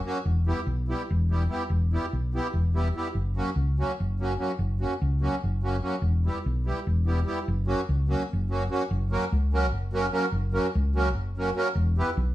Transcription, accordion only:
0.05 F#3 A#3 C#4 F#4
0.46 G3 B3 E4 G4
0.88 G3 B3 E4 G4
1.29 G3 B3 E4 G4
1.49 G3 B3 E4 G4
1.92 G3 B3 E4 G4
2.33 G3 B3 E4 G4
2.74 G3 B3 E4 G4
2.95 G3 B3 E4 G4
3.36 F#3 A#3 C#4 F#4
3.78 F#3 A#3 C#4 F#4
4.20 F#3 A#3 C#4 F#4
4.38 F#3 A#3 C#4 F#4
4.79 F#3 A#3 C#4 F#4
5.21 F#3 A#3 C#4 F#4
5.62 F#3 A#3 C#4 F#4
5.82 F#3 A#3 C#4 F#4
6.25 G3 B3 E4 G4
6.65 G3 B3 E4 G4
7.05 G3 B3 E4 G4
7.25 G3 B3 E4 G4
7.66 F#3 A#3 C#4 F#4
8.08 F#3 A#3 C#4 F#4
8.49 F#3 A#3 C#4 F#4
8.69 F#3 A#3 C#4 F#4
9.11 F#3 A#3 C#4 F#4 A#4
9.53 F#3 A#3 C#4 F#4 A#4
9.93 F#3 A#3 C#4 F#4 A#4
10.11 F#3 A#3 C#4 F#4 A#4
10.52 F#3 A#3 C#4 F#4 A#4
10.95 F#3 A#3 C#4 F#4 A#4
11.37 F#3 A#3 C#4 F#4 A#4
11.55 F#3 A#3 C#4 F#4 A#4
11.98 G3 B3 E4 G4 B4

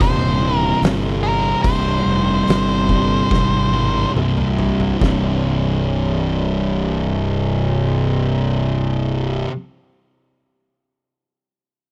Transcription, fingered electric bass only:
0.00 D#1
0.82 G1
1.64 C1
2.06 F1
2.48 G1
3.31 G#1
4.16 C2
5.01 C1

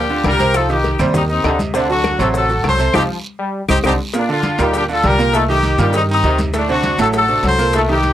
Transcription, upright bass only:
Already playing: D2
0.24 C2
0.99 D#2
1.44 D2
2.19 A1
2.64 C2
2.94 C2
3.69 C2
3.84 C2
4.59 D2
5.04 C2
5.78 G2
6.23 D2
6.98 A1
7.43 C2

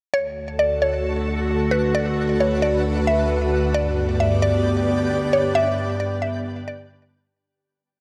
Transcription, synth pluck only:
0.14 C#5
0.59 D5
0.82 C#5
1.71 B4
1.95 D5
2.40 C#5
2.62 D5
3.07 E5
3.74 D5
4.20 E5
4.42 D5
5.33 C#5
5.55 E5
6.00 D5
6.22 E5
6.68 D5

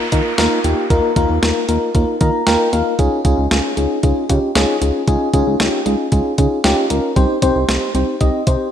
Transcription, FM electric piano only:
0.12 A#3 D#4 F4 A#4
0.38 A#3 D#4 F4 A#4
0.64 A#3 D#4 F4 G4
0.90 A#3 D#4 F4 A#4
1.16 A#3 D#4 F4 A#4
1.42 A#3 D#4 F4 A#4
1.69 A#3 D#4 F4 A#4
1.95 A#3 D#4 F4 A#4
2.21 A#3 D#4 F4 A#4 A#5
2.47 A#3 D#4 F4 A#4 G5
2.73 A#3 D#4 F4 A#4 F5
2.99 C#4 D#4 F4 G#4
3.25 C#4 D#4 F4 G#4
3.51 C#4 D#4 F4 G#4
3.77 C#4 D#4 F4 G#4
4.03 C#4 D#4 F4 G#4
4.29 C#4 D#4 F4 G4
4.56 C#4 D#4 F4 G#4
4.82 C#4 D#4 F4 G#4
5.08 C#4 D#4 F4 G#4
5.34 C#4 D#4 F4 G#4
5.60 C#4 D#4 F4 G4
5.86 C#4 D#4 F4 G#4
6.12 C#4 D#4 F4 G#4
6.38 C#4 D#4 F4 G#4
6.64 C#4 D#4 F4 G4
6.90 C#4 D#4 F4 A#4
7.16 C4 D#4 G4 C5
7.43 C4 D#4 G4 C5
7.69 C4 D#4 G4 C5
7.95 C4 D#4 G4 C5
8.21 C4 D#4 G4 D#5
8.47 C4 D#4 G4 C5

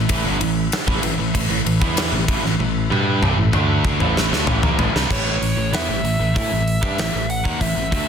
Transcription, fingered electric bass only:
0.09 A1
0.25 G1
0.41 A1
0.87 A1
1.04 A1
1.19 A1
1.35 A1
1.50 A1
1.65 A1
1.81 E2
2.12 A1
2.28 A1
2.43 A1
2.59 A1
2.90 G2
3.22 C2
3.38 A1
3.53 D2
4.00 A1
4.31 D2
4.47 A1
4.63 D#2
4.78 A1
4.94 C2
5.11 A1
5.42 A1
5.57 A1
5.73 E2
5.89 A1
6.04 A1
6.20 A1
6.36 A2
6.51 A1
6.83 G2
6.98 A1
7.14 A1
7.45 D#2
7.61 A1
7.77 A1
7.92 D2

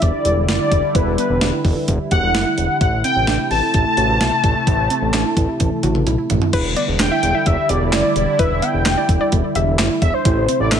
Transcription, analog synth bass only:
0.02 E1
0.25 E1
0.37 E1
0.48 F#1
0.72 E1
0.95 E1
1.07 E1
1.30 E1
1.42 E1
1.65 E1
1.88 E1
2.12 E1
2.23 E1
2.35 F#1
2.58 E1
2.81 A1
2.93 A1
3.16 A1
3.28 A1
3.51 A1
3.74 A1
3.97 A1
4.09 A1
4.21 B1
4.44 A1
4.67 A1
4.79 A1
5.02 A1
5.14 A1
5.37 A1
5.60 A1
5.83 A1
5.95 A1
6.07 B1
6.30 A1
6.53 E1
6.65 E1
6.88 E1
7.00 E1
7.23 E1
7.46 E1
7.69 E1
7.81 E1
7.93 F#1
8.16 E1
8.39 E1
8.51 E1
8.74 E1
8.86 E1
9.09 E1
9.33 E1
9.55 E1
9.67 E1
9.79 F#1
10.02 E1
10.25 A1
10.37 A1
10.60 A1
10.72 A1

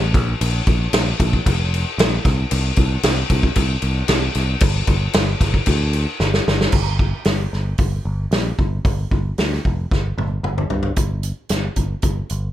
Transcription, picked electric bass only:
Already playing: A1
0.15 A#1
0.41 A#1
0.67 A#1
0.93 A#1
1.20 A#1
1.46 F1
1.98 A#1
2.26 C2
2.52 C2
2.77 C2
3.04 C2
3.30 C2
3.56 C2
3.83 C2
4.09 C2
4.35 C2
4.62 G1
4.87 G1
5.15 G1
5.41 G1
5.67 D2
6.20 G1
6.48 G1
6.73 G1
7.26 G1
7.53 G1
7.78 G1
8.05 G1
8.31 A#1
8.59 G1
8.85 G1
9.11 G1
9.38 D2
9.66 F1
9.92 G1
10.18 G1
10.43 G1
10.71 G2
10.97 G1
11.50 G1
11.76 G1
12.03 G1
12.31 G1

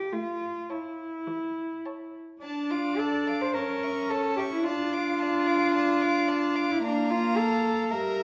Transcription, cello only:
Already playing: G4
0.13 F4
0.70 E4
2.42 D4
2.71 F4
2.98 A4
3.41 C5
3.54 A#4
4.10 A4
4.37 G4
4.52 E4
4.64 F4
6.71 E4
6.84 D4
7.11 F4
7.37 A4
7.91 A#4

